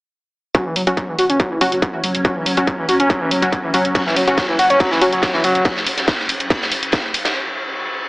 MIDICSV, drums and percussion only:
0, 0, Header, 1, 2, 480
1, 0, Start_track
1, 0, Tempo, 425532
1, 617, Time_signature, 4, 2, 24, 8
1, 9121, End_track
2, 0, Start_track
2, 0, Title_t, "Drums"
2, 616, Note_on_c, 9, 36, 117
2, 617, Note_on_c, 9, 42, 71
2, 729, Note_off_c, 9, 36, 0
2, 729, Note_off_c, 9, 42, 0
2, 857, Note_on_c, 9, 46, 99
2, 970, Note_off_c, 9, 46, 0
2, 982, Note_on_c, 9, 42, 64
2, 1094, Note_off_c, 9, 42, 0
2, 1096, Note_on_c, 9, 36, 115
2, 1096, Note_on_c, 9, 42, 67
2, 1209, Note_off_c, 9, 36, 0
2, 1209, Note_off_c, 9, 42, 0
2, 1337, Note_on_c, 9, 46, 84
2, 1450, Note_off_c, 9, 46, 0
2, 1462, Note_on_c, 9, 42, 64
2, 1575, Note_off_c, 9, 42, 0
2, 1576, Note_on_c, 9, 36, 110
2, 1577, Note_on_c, 9, 42, 66
2, 1689, Note_off_c, 9, 36, 0
2, 1690, Note_off_c, 9, 42, 0
2, 1817, Note_on_c, 9, 46, 105
2, 1930, Note_off_c, 9, 46, 0
2, 1942, Note_on_c, 9, 42, 66
2, 2055, Note_off_c, 9, 42, 0
2, 2056, Note_on_c, 9, 36, 107
2, 2057, Note_on_c, 9, 42, 66
2, 2169, Note_off_c, 9, 36, 0
2, 2170, Note_off_c, 9, 42, 0
2, 2296, Note_on_c, 9, 46, 90
2, 2409, Note_off_c, 9, 46, 0
2, 2421, Note_on_c, 9, 42, 65
2, 2534, Note_off_c, 9, 42, 0
2, 2536, Note_on_c, 9, 36, 125
2, 2537, Note_on_c, 9, 42, 69
2, 2649, Note_off_c, 9, 36, 0
2, 2650, Note_off_c, 9, 42, 0
2, 2777, Note_on_c, 9, 46, 105
2, 2890, Note_off_c, 9, 46, 0
2, 2901, Note_on_c, 9, 42, 67
2, 3014, Note_off_c, 9, 42, 0
2, 3016, Note_on_c, 9, 36, 127
2, 3017, Note_on_c, 9, 42, 65
2, 3129, Note_off_c, 9, 36, 0
2, 3130, Note_off_c, 9, 42, 0
2, 3256, Note_on_c, 9, 46, 89
2, 3369, Note_off_c, 9, 46, 0
2, 3381, Note_on_c, 9, 42, 67
2, 3494, Note_off_c, 9, 42, 0
2, 3496, Note_on_c, 9, 36, 117
2, 3497, Note_on_c, 9, 42, 67
2, 3608, Note_off_c, 9, 36, 0
2, 3610, Note_off_c, 9, 42, 0
2, 3737, Note_on_c, 9, 46, 109
2, 3850, Note_off_c, 9, 46, 0
2, 3862, Note_on_c, 9, 42, 66
2, 3975, Note_off_c, 9, 42, 0
2, 3976, Note_on_c, 9, 36, 115
2, 3978, Note_on_c, 9, 42, 70
2, 4089, Note_off_c, 9, 36, 0
2, 4091, Note_off_c, 9, 42, 0
2, 4217, Note_on_c, 9, 46, 93
2, 4330, Note_off_c, 9, 46, 0
2, 4342, Note_on_c, 9, 42, 67
2, 4455, Note_off_c, 9, 42, 0
2, 4456, Note_on_c, 9, 36, 120
2, 4457, Note_on_c, 9, 42, 67
2, 4458, Note_on_c, 9, 51, 88
2, 4569, Note_off_c, 9, 36, 0
2, 4570, Note_off_c, 9, 42, 0
2, 4571, Note_off_c, 9, 51, 0
2, 4587, Note_on_c, 9, 38, 46
2, 4698, Note_on_c, 9, 46, 105
2, 4698, Note_on_c, 9, 51, 67
2, 4700, Note_off_c, 9, 38, 0
2, 4810, Note_off_c, 9, 46, 0
2, 4810, Note_off_c, 9, 51, 0
2, 4823, Note_on_c, 9, 42, 63
2, 4934, Note_on_c, 9, 51, 96
2, 4935, Note_off_c, 9, 42, 0
2, 4936, Note_on_c, 9, 36, 127
2, 4938, Note_on_c, 9, 42, 67
2, 4939, Note_on_c, 9, 38, 108
2, 5046, Note_off_c, 9, 51, 0
2, 5049, Note_off_c, 9, 36, 0
2, 5051, Note_off_c, 9, 42, 0
2, 5052, Note_off_c, 9, 38, 0
2, 5175, Note_on_c, 9, 51, 67
2, 5177, Note_on_c, 9, 46, 97
2, 5288, Note_off_c, 9, 51, 0
2, 5290, Note_off_c, 9, 46, 0
2, 5302, Note_on_c, 9, 42, 65
2, 5308, Note_on_c, 9, 51, 42
2, 5413, Note_off_c, 9, 51, 0
2, 5413, Note_on_c, 9, 51, 92
2, 5415, Note_off_c, 9, 42, 0
2, 5416, Note_on_c, 9, 36, 122
2, 5417, Note_on_c, 9, 42, 67
2, 5526, Note_off_c, 9, 51, 0
2, 5529, Note_off_c, 9, 36, 0
2, 5530, Note_off_c, 9, 42, 0
2, 5542, Note_on_c, 9, 38, 51
2, 5655, Note_off_c, 9, 38, 0
2, 5656, Note_on_c, 9, 51, 75
2, 5657, Note_on_c, 9, 46, 114
2, 5769, Note_off_c, 9, 51, 0
2, 5770, Note_off_c, 9, 46, 0
2, 5781, Note_on_c, 9, 42, 70
2, 5888, Note_on_c, 9, 38, 110
2, 5894, Note_off_c, 9, 42, 0
2, 5896, Note_on_c, 9, 36, 120
2, 5897, Note_on_c, 9, 42, 66
2, 5899, Note_on_c, 9, 51, 90
2, 6001, Note_off_c, 9, 38, 0
2, 6009, Note_off_c, 9, 36, 0
2, 6010, Note_off_c, 9, 42, 0
2, 6012, Note_off_c, 9, 51, 0
2, 6018, Note_on_c, 9, 38, 46
2, 6131, Note_off_c, 9, 38, 0
2, 6133, Note_on_c, 9, 51, 73
2, 6136, Note_on_c, 9, 46, 92
2, 6246, Note_off_c, 9, 51, 0
2, 6249, Note_off_c, 9, 46, 0
2, 6262, Note_on_c, 9, 42, 66
2, 6372, Note_on_c, 9, 51, 88
2, 6375, Note_off_c, 9, 42, 0
2, 6376, Note_on_c, 9, 36, 121
2, 6377, Note_on_c, 9, 42, 65
2, 6484, Note_off_c, 9, 51, 0
2, 6489, Note_off_c, 9, 36, 0
2, 6490, Note_off_c, 9, 42, 0
2, 6498, Note_on_c, 9, 38, 42
2, 6610, Note_off_c, 9, 38, 0
2, 6616, Note_on_c, 9, 46, 110
2, 6620, Note_on_c, 9, 51, 65
2, 6729, Note_off_c, 9, 46, 0
2, 6732, Note_off_c, 9, 51, 0
2, 6736, Note_on_c, 9, 38, 52
2, 6741, Note_on_c, 9, 42, 64
2, 6849, Note_off_c, 9, 38, 0
2, 6854, Note_off_c, 9, 42, 0
2, 6856, Note_on_c, 9, 36, 122
2, 6856, Note_on_c, 9, 42, 66
2, 6857, Note_on_c, 9, 51, 97
2, 6858, Note_on_c, 9, 38, 118
2, 6968, Note_off_c, 9, 42, 0
2, 6969, Note_off_c, 9, 36, 0
2, 6970, Note_off_c, 9, 51, 0
2, 6971, Note_off_c, 9, 38, 0
2, 6977, Note_on_c, 9, 38, 45
2, 7090, Note_off_c, 9, 38, 0
2, 7096, Note_on_c, 9, 46, 92
2, 7104, Note_on_c, 9, 51, 65
2, 7209, Note_off_c, 9, 46, 0
2, 7217, Note_off_c, 9, 51, 0
2, 7222, Note_on_c, 9, 42, 66
2, 7334, Note_off_c, 9, 42, 0
2, 7336, Note_on_c, 9, 36, 117
2, 7337, Note_on_c, 9, 42, 67
2, 7342, Note_on_c, 9, 51, 90
2, 7449, Note_off_c, 9, 36, 0
2, 7449, Note_off_c, 9, 42, 0
2, 7455, Note_off_c, 9, 51, 0
2, 7463, Note_on_c, 9, 38, 52
2, 7575, Note_on_c, 9, 46, 106
2, 7576, Note_off_c, 9, 38, 0
2, 7580, Note_on_c, 9, 51, 68
2, 7688, Note_off_c, 9, 46, 0
2, 7693, Note_off_c, 9, 51, 0
2, 7702, Note_on_c, 9, 42, 67
2, 7806, Note_on_c, 9, 51, 79
2, 7814, Note_off_c, 9, 42, 0
2, 7815, Note_on_c, 9, 38, 113
2, 7816, Note_on_c, 9, 36, 114
2, 7817, Note_on_c, 9, 42, 65
2, 7919, Note_off_c, 9, 51, 0
2, 7928, Note_off_c, 9, 38, 0
2, 7929, Note_off_c, 9, 36, 0
2, 7930, Note_off_c, 9, 42, 0
2, 8054, Note_on_c, 9, 51, 58
2, 8057, Note_on_c, 9, 46, 96
2, 8167, Note_off_c, 9, 51, 0
2, 8170, Note_off_c, 9, 46, 0
2, 8177, Note_on_c, 9, 38, 103
2, 8181, Note_on_c, 9, 42, 61
2, 8182, Note_on_c, 9, 51, 75
2, 8289, Note_off_c, 9, 38, 0
2, 8294, Note_off_c, 9, 42, 0
2, 8295, Note_off_c, 9, 51, 0
2, 9121, End_track
0, 0, End_of_file